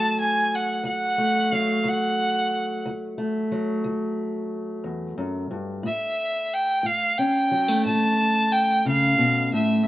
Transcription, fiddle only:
Already playing: A5
0.20 G#5
0.55 F#5
0.87 F#5
1.54 F5
1.88 F#5
5.87 E5
6.53 G5
6.86 F5
7.18 G5
7.85 A5
8.52 G5
8.88 F5
9.54 E5

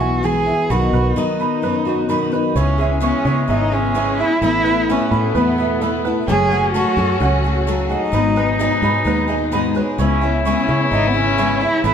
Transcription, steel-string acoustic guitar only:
Already playing: E2 B2 E3 F#4
0.01 B3
0.24 E3
0.48 B3
0.70 B2 D#3 B3 D#4
0.93 D#4
1.16 D#3
1.62 F#2
1.86 F#4
2.08 D#3
2.32 D#4

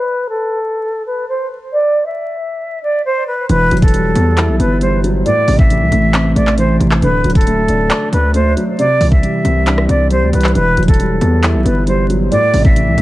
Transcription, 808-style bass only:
3.49 E1
3.71 E1
4.16 E2
4.49 B1
4.60 G1
5.48 A1
5.81 C2
5.92 A1
6.36 A1
6.80 A1
7.02 D1
7.24 D1
7.68 D1
8.13 D2
9.01 C2
9.45 C2
9.89 C2
10.22 D2
10.33 C2
10.55 E1
10.77 E1
11.21 E2
11.54 B1
11.65 G1
12.54 A1
12.87 C2
12.98 A1

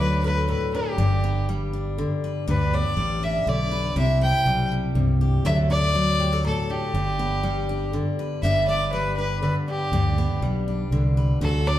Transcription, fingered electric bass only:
Already playing: D2
0.98 G1
2.48 D2
2.97 A1
3.46 B1
3.96 C2
4.46 B1
4.95 C2
5.45 D2
6.94 G1
8.43 G1
9.92 D2
10.41 B1
10.91 C2
11.41 D2

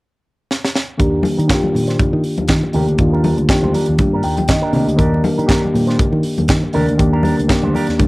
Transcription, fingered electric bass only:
1.00 D#2
1.39 D#3
1.74 A#2
2.13 D#3
2.38 D#2
2.49 D#3
2.74 D#2
2.88 D2
2.99 D#2
3.38 D2
3.63 D2
3.89 D#2
3.99 G2
4.24 D#2
4.49 D#3
4.73 C3
4.87 D2
4.99 D#2
5.39 D#3
5.74 A#2
6.12 D#3
6.39 D#2
6.49 D#3
6.75 D#2
6.89 D2
7.00 D#2
7.39 D2
7.64 D2
7.89 D#2
8.00 G2

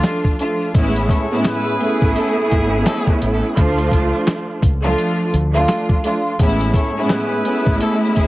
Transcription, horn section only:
1.10 C#4 A4 C#5
1.45 E4 G#4 B4
2.16 C#4 E4 A4
2.50 C#4 E4 G#4
2.86 C#4 E4 A4
6.74 C#4 A4 C#5
7.09 E4 G#4 B4
7.81 C#4 E4 A4
8.16 C#4 E4 G#4

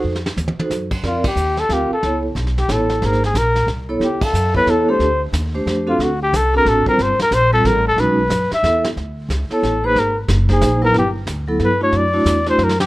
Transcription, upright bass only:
0.04 F2
0.37 D#2
0.58 muted upright bass stroke
0.70 F#2
1.03 F2
1.36 D#2
1.69 D2
1.91 muted upright bass stroke
2.03 C#2
2.35 B1
2.68 A1
3.02 G#1
3.34 A#1
3.67 C2
4.00 C#2
4.33 F#2
4.66 E2
4.99 D2
5.32 D#2
5.66 F2
5.99 D2
6.33 C2
6.65 A1
6.87 muted upright bass stroke
6.98 G1
7.19 muted upright bass stroke
7.31 A#1
7.64 A1
7.96 B1
8.29 F#2
8.51 muted upright bass stroke
8.63 E2
8.96 D2
9.29 C#2
9.49 muted upright bass stroke
9.62 A1
9.95 G#1
10.28 F#1
10.61 A#1
10.93 G1
11.27 D2
11.59 G2
11.92 F#2
12.25 E2
12.58 F#2

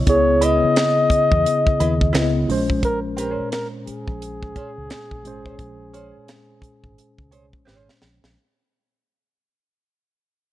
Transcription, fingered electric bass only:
0.07 C#2
0.64 muted fingered electric bass stroke
1.10 muted fingered electric bass stroke
1.32 E2
1.81 D#2
2.14 C#2
2.49 A#1
3.40 muted fingered electric bass stroke
3.88 muted fingered electric bass stroke
4.08 A#1
4.56 muted fingered electric bass stroke
4.78 C#2
5.12 A#1
5.25 G#1
5.59 A#1
6.16 muted fingered electric bass stroke
6.62 muted fingered electric bass stroke
6.84 G#1
7.19 C#2
7.33 C2
7.54 A#1
7.67 G#1
8.02 A#1
8.23 A#1

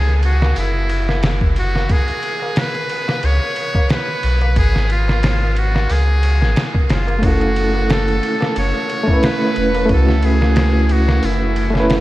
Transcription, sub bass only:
Already playing: C#2
0.57 F#1
3.23 C#2
4.23 B1
4.56 G#1
5.90 C#2
6.42 G#1
6.90 F#1
8.57 F#1
9.57 E1
9.90 C#2
11.23 F#1

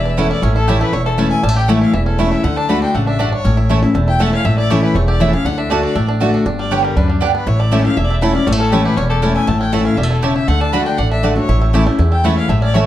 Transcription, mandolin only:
0.17 A3 E4 C#5 A5
0.67 A3 E4 C#5 A5
1.18 A3 E4 C#5 A5
1.68 A3 E4 C#5 A5
2.19 A3 E4 C#5 A5
2.69 A3 F#4 D5 A5
3.19 A3 F#4 D5 A5
3.69 A3 E4 C#5 A5
4.20 A3 E4 C#5 A5
4.70 A3 E4 C#5 A5
5.20 A3 E4 C#5 A5
5.70 A3 F#4 D5 A5
6.20 A3 F#4 D5 A5
6.71 B3 G4 D5 G5
7.21 B3 G4 D5 G5
7.72 A3 E4 C#5 A5
8.22 A3 E4 C#5 A5
8.72 A3 E4 C#5 A5
9.22 A3 E4 C#5 A5
9.72 A3 E4 C#5 A5
10.22 A3 E4 C#5 A5
10.73 A3 F#4 D5 A5
11.23 A3 F#4 D5 A5
11.74 A3 E4 C#5 A5
12.24 A3 E4 C#5 A5
12.75 A3 E4 C#5 A5

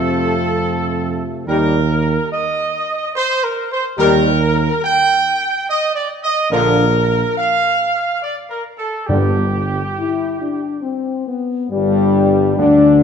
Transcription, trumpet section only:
Already playing: A4
1.48 A#4
2.31 D#5
3.15 C5
3.43 A#4
3.71 C5
3.98 A#4
4.84 G5
5.69 D#5
5.94 D5
6.23 D#5
6.51 A#4
7.37 F5
8.23 D5
8.50 A#4
8.78 A4
9.07 G4
11.71 G3
12.59 D4

